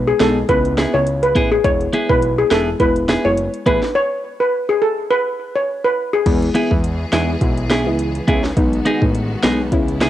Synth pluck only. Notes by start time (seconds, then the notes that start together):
0.20 G#3 B3 D#4
0.49 B3 C#4 E4
0.94 B3 C#4 E4
1.64 G#3 B3 E4
2.09 G#3 B3 E4
2.51 G#3 B3 E4
2.80 G#3 B3 E4
3.25 G#3 B3 E4
6.26 G#3 B3 E4
6.71 G#3 B3 E4
7.12 G#3 B3 E4
7.41 G#3 B3 E4
7.86 G#3 B3 E4
8.57 G#3 B3 D#4
9.02 G#3 B3 D#4
9.43 G#3 B3 D#4
9.72 B3 C#4 E4